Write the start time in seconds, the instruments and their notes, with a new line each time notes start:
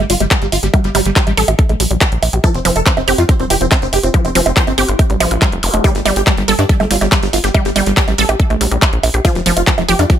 0.10 analog synth bass G1, synth arpeggio sound G3, supersaw synth F4, open hi-hat
0.20 analog synth bass G1, synth arpeggio sound G3, supersaw synth G3, closed hi-hat, high bongo
0.31 supersaw synth G3, kick, clap, closed hi-hat
0.42 analog synth bass G1, supersaw synth G3, closed hi-hat
0.52 analog synth bass G1, supersaw synth F4, open hi-hat, high bongo
0.63 analog synth bass G1, supersaw synth G3, synth arpeggio sound G4, closed hi-hat
0.74 synth arpeggio sound G3, kick, closed hi-hat, high bongo
0.84 analog synth bass G1, supersaw synth G3, closed hi-hat
0.95 analog synth bass G1, synth arpeggio sound G3, supersaw synth G3, open hi-hat, high bongo
1.06 analog synth bass G1, supersaw synth G3, closed hi-hat
1.16 synth arpeggio sound G3, supersaw synth G4, kick, clap, closed hi-hat
1.27 analog synth bass A1, supersaw synth G3, closed hi-hat, high bongo
1.37 analog synth bass A1, supersaw synth G3, synth arpeggio sound A4, open hi-hat
1.48 analog synth bass A1, synth arpeggio sound G4, closed hi-hat, high bongo
1.59 kick, closed hi-hat
1.69 analog synth bass A#1, synth arpeggio sound A3, closed hi-hat, high bongo
1.80 analog synth bass A#1, synth arpeggio sound G3, open hi-hat
1.91 analog synth bass A#1, synth arpeggio sound G3, closed hi-hat
2.01 kick, clap, closed hi-hat, high bongo
2.12 analog synth bass A#1, closed hi-hat
2.23 analog synth bass A#1, open hi-hat, high bongo
2.33 analog synth bass A#1, synth arpeggio sound G4, closed hi-hat
2.44 synth arpeggio sound F3, supersaw synth A4, kick, closed hi-hat, high bongo
2.54 analog synth bass F1, supersaw synth C4, closed hi-hat
2.65 analog synth bass F1, synth arpeggio sound F3, supersaw synth C4, open hi-hat
2.76 analog synth bass F1, supersaw synth A4, closed hi-hat, high bongo
2.86 synth arpeggio sound F3, supersaw synth C4, kick, clap, closed hi-hat
2.97 analog synth bass F1, supersaw synth C4, closed hi-hat, high bongo
3.08 analog synth bass F1, supersaw synth C4, synth arpeggio sound G4, open hi-hat
3.18 analog synth bass F2, synth arpeggio sound F4, supersaw synth F4, closed hi-hat, high bongo
3.29 supersaw synth C4, kick, closed hi-hat
3.40 analog synth bass F1, synth arpeggio sound G3, supersaw synth C4, closed hi-hat
3.50 analog synth bass F1, synth arpeggio sound F3, supersaw synth G4, open hi-hat, high bongo
3.61 analog synth bass F1, synth arpeggio sound F3, supersaw synth C4, closed hi-hat
3.71 supersaw synth C4, kick, clap, closed hi-hat, high bongo
3.82 analog synth bass F1, supersaw synth C4, closed hi-hat
3.93 analog synth bass F1, supersaw synth G4, open hi-hat, high bongo
4.03 analog synth bass F1, supersaw synth C4, synth arpeggio sound F4, closed hi-hat
4.14 synth arpeggio sound F3, kick, closed hi-hat
4.25 analog synth bass F1, supersaw synth C4, closed hi-hat, high bongo
4.35 analog synth bass F1, synth arpeggio sound F3, supersaw synth C4, open hi-hat
4.46 analog synth bass F1, supersaw synth C4, closed hi-hat, high bongo
4.57 synth arpeggio sound F3, supersaw synth C5, kick, clap, closed hi-hat
4.67 analog synth bass G1, supersaw synth C4, closed hi-hat, high bongo
4.78 analog synth bass G1, supersaw synth C4, synth arpeggio sound G4, open hi-hat
4.89 analog synth bass G1, synth arpeggio sound F4, closed hi-hat
4.99 kick, closed hi-hat, high bongo
5.10 analog synth bass A1, synth arpeggio sound G3, closed hi-hat
5.20 analog synth bass A1, synth arpeggio sound F3, open hi-hat, high bongo
5.31 analog synth bass A1, synth arpeggio sound F4, closed hi-hat
5.42 synth arpeggio sound G3, kick, clap, closed hi-hat, high bongo
5.52 analog synth bass F1, closed hi-hat
5.63 analog synth bass F1, open hi-hat, zap
5.74 analog synth bass F1, synth arpeggio sound A3, closed hi-hat, high bongo
5.84 synth arpeggio sound G3, supersaw synth G4, kick, closed hi-hat, high bongo
5.95 analog synth bass G1, supersaw synth G3, closed hi-hat
6.06 analog synth bass G1, synth arpeggio sound G3, supersaw synth G3, open hi-hat, high bongo
6.16 analog synth bass G1, supersaw synth G4, closed hi-hat
6.27 synth arpeggio sound G3, supersaw synth G3, kick, clap, closed hi-hat, high bongo
6.37 analog synth bass G1, supersaw synth G3, closed hi-hat
6.48 analog synth bass G1, supersaw synth G3, synth arpeggio sound A4, open hi-hat
6.59 analog synth bass G2, supersaw synth D4, synth arpeggio sound G4, closed hi-hat, high bongo
6.69 supersaw synth G3, kick, closed hi-hat
6.80 analog synth bass G1, supersaw synth G3, synth arpeggio sound A3, closed hi-hat, high bongo
6.91 analog synth bass G1, synth arpeggio sound G3, supersaw synth F4, open hi-hat
7.01 analog synth bass G1, synth arpeggio sound G3, supersaw synth G3, closed hi-hat, high bongo
7.12 supersaw synth G3, kick, clap, closed hi-hat
7.23 analog synth bass G1, supersaw synth G3, closed hi-hat
7.33 analog synth bass G1, supersaw synth F4, open hi-hat, high bongo
7.44 analog synth bass G1, supersaw synth G3, synth arpeggio sound G4, closed hi-hat
7.54 synth arpeggio sound G3, kick, closed hi-hat, high bongo
7.65 analog synth bass G1, supersaw synth G3, closed hi-hat
7.76 analog synth bass G1, supersaw synth G3, synth arpeggio sound G3, open hi-hat, high bongo
7.86 analog synth bass G1, supersaw synth G3, closed hi-hat
7.97 synth arpeggio sound G3, supersaw synth G4, kick, clap, closed hi-hat
8.08 analog synth bass A1, supersaw synth G3, closed hi-hat, high bongo
8.18 analog synth bass A1, supersaw synth G3, synth arpeggio sound A4, open hi-hat
8.29 analog synth bass A1, synth arpeggio sound G4, closed hi-hat, high bongo
8.40 kick, closed hi-hat
8.50 analog synth bass A#1, synth arpeggio sound A3, closed hi-hat, high bongo
8.61 analog synth bass A#1, synth arpeggio sound G3, open hi-hat
8.72 analog synth bass A#1, synth arpeggio sound G3, closed hi-hat
8.82 kick, clap, closed hi-hat, high bongo
8.93 analog synth bass A#1, closed hi-hat
9.03 analog synth bass A#1, open hi-hat, high bongo
9.14 analog synth bass A#1, synth arpeggio sound G4, closed hi-hat
9.25 synth arpeggio sound F3, supersaw synth F4, kick, closed hi-hat, high bongo
9.35 analog synth bass F1, supersaw synth F3, closed hi-hat
9.46 analog synth bass F1, supersaw synth F3, synth arpeggio sound F3, open hi-hat
9.57 analog synth bass F1, supersaw synth F4, closed hi-hat, high bongo
9.67 supersaw synth F3, synth arpeggio sound F3, kick, clap, closed hi-hat
9.78 analog synth bass F1, supersaw synth F3, closed hi-hat, high bongo
9.88 analog synth bass F1, supersaw synth F3, synth arpeggio sound G4, open hi-hat
9.99 analog synth bass F2, supersaw synth D4, synth arpeggio sound F4, closed hi-hat, high bongo
10.10 supersaw synth F3, kick, closed hi-hat